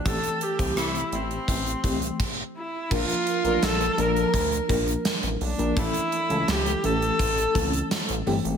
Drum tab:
CC |------------x---|x---------------|----------------|
HH |xxxxxxxxxxxx----|-xxxxxxxxxxxxxox|xxxxxxxxxxxxxxox|
TB |----------------|----x-------x---|----x-------x---|
SD |----r-----------|----o-------o---|----o-------o---|
BD |o--o----o-o-o---|o-------o-o-----|o-------o-o-----|